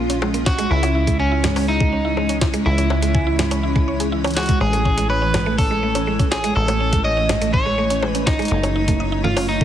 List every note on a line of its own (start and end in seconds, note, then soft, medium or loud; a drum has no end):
0.00 0.68 A#1 medium
0.00 4.57 G#3 medium
0.00 4.57 C#4 medium
0.00 0.18 F4 loud
0.00 0.67 F4 medium
0.00 0.69 G#4 medium
0.10 0.21 C#4 medium
0.10 closed hi-hat medium
0.22 0.33 G#3 medium
0.22 high bongo medium
0.34 0.45 A#3 medium
0.34 closed hi-hat medium
0.46 0.53 C#4 medium
0.46 0.71 F#4 loud
0.46 kick loud
0.46 snare loud
0.58 0.65 G#3 loud
0.58 closed hi-hat medium
0.71 2.63 C#2 medium
0.71 8.47 E3 medium
0.71 0.82 G#3 medium
0.71 1.19 E4 loud
0.71 9.64 C#5 medium
0.83 0.94 C#4 medium
0.83 closed hi-hat medium
0.83 high bongo medium
0.95 1.06 E4 medium
1.07 1.18 G#3 medium
1.07 kick loud
1.07 closed hi-hat medium
1.20 1.68 C#4 medium
1.20 1.26 G#5 medium
1.32 1.43 E4 medium
1.44 1.50 G#3 medium
1.44 snare loud
1.44 low conga medium
1.56 1.68 C#4 medium
1.56 open hi-hat medium
1.56 high bongo medium
1.68 2.38 D#4 medium
1.68 1.80 E4 medium
1.80 1.91 G#3 medium
1.80 kick loud
1.93 1.99 C#4 medium
2.05 2.16 E4 medium
2.17 2.28 G#3 medium
2.17 high bongo soft
2.29 2.40 C#4 medium
2.29 closed hi-hat medium
2.41 2.48 E4 medium
2.41 kick loud
2.41 snare loud
2.54 2.60 G#3 loud
2.54 closed hi-hat medium
2.66 4.59 C#2 medium
2.66 2.77 G#3 medium
2.66 4.08 E4 loud
2.78 2.89 C#4 medium
2.78 closed hi-hat medium
2.90 3.01 E4 medium
2.90 high bongo medium
3.02 3.13 G#3 medium
3.02 closed hi-hat medium
3.15 3.21 G#5 medium
3.15 kick loud
3.27 3.38 E4 medium
3.39 3.46 G#3 medium
3.39 snare loud
3.39 low conga medium
3.51 3.63 C#4 loud
3.51 closed hi-hat medium
3.51 high bongo medium
3.63 3.75 E4 medium
3.76 3.87 G#3 medium
3.76 kick loud
3.88 3.99 C#5 medium
4.00 4.11 G#4 medium
4.00 closed hi-hat medium
4.12 4.24 E4 medium
4.24 4.31 C#4 loud
4.24 closed hi-hat soft
4.24 high bongo medium
4.27 closed hi-hat soft
4.31 closed hi-hat soft
4.34 4.61 F#4 medium
4.34 snare loud
4.34 closed hi-hat soft
4.37 4.43 G#4 medium
4.37 closed hi-hat soft
4.40 closed hi-hat soft
4.43 closed hi-hat soft
4.46 kick loud
4.46 closed hi-hat soft
4.49 4.60 G#3 medium
4.49 closed hi-hat medium
4.61 6.54 A1 medium
4.61 4.73 G#3 medium
4.61 9.64 A3 medium
4.61 5.09 G#4 loud
4.61 8.47 G#5 medium
4.61 high bongo soft
4.73 4.84 A3 medium
4.73 closed hi-hat medium
4.85 4.96 C#4 medium
4.85 kick loud
4.97 5.08 G#3 medium
4.97 closed hi-hat medium
5.10 5.58 B4 medium
5.10 5.16 C#5 medium
5.22 5.33 C#4 medium
5.34 5.41 G#3 medium
5.34 snare loud
5.34 high bongo medium
5.34 low conga medium
5.46 5.58 A3 loud
5.58 5.70 C#4 medium
5.58 6.28 A4 medium
5.58 kick loud
5.58 open hi-hat medium
5.71 5.82 G#3 medium
5.83 5.89 A3 medium
5.95 6.07 C#4 medium
5.95 closed hi-hat medium
5.95 high bongo soft
6.07 6.18 G#3 medium
6.19 6.26 C#4 medium
6.19 kick loud
6.19 closed hi-hat medium
6.31 6.38 C#4 medium
6.31 6.55 G#4 medium
6.31 snare loud
6.44 6.50 G#3 loud
6.44 closed hi-hat medium
6.56 8.49 A1 medium
6.56 6.68 G#3 medium
6.56 7.04 A4 loud
6.68 6.79 A3 medium
6.68 closed hi-hat medium
6.68 high bongo medium
6.80 6.91 C#4 medium
6.93 7.04 G#3 medium
6.93 kick loud
6.93 closed hi-hat medium
7.05 7.11 C#5 medium
7.05 7.53 D#5 loud
7.17 7.28 C#4 medium
7.29 7.36 G#3 medium
7.29 snare loud
7.29 high bongo medium
7.29 low conga loud
7.41 7.53 A3 loud
7.41 closed hi-hat medium
7.53 7.65 C#4 medium
7.53 8.09 C#5 loud
7.53 kick loud
7.66 7.77 G#3 medium
7.78 7.85 A3 medium
7.90 8.02 C#4 medium
7.90 closed hi-hat medium
8.02 8.13 G#3 medium
8.02 high bongo medium
8.09 8.29 B4 loud
8.15 8.21 C#4 medium
8.15 closed hi-hat medium
8.26 8.33 C#4 medium
8.26 9.24 D#4 medium
8.26 kick loud
8.26 snare loud
8.39 8.46 G#3 loud
8.39 closed hi-hat soft
8.42 closed hi-hat soft
8.45 closed hi-hat soft
8.48 9.64 F#1 medium
8.48 8.63 A3 medium
8.48 9.64 D#4 medium
8.48 9.64 F#4 medium
8.48 closed hi-hat medium
8.63 8.74 C#4 medium
8.63 closed hi-hat medium
8.63 high bongo medium
8.76 8.87 D#4 medium
8.88 8.99 A3 medium
8.88 kick loud
8.88 closed hi-hat medium
9.00 9.07 D#5 medium
9.12 9.23 D#4 medium
9.24 9.31 A3 medium
9.24 9.48 F4 medium
9.24 low conga loud
9.37 9.48 C#4 loud
9.37 open hi-hat medium
9.37 high bongo medium
9.48 9.64 D#4 medium
9.48 9.60 D#4 medium
9.61 9.64 A3 medium
9.61 kick loud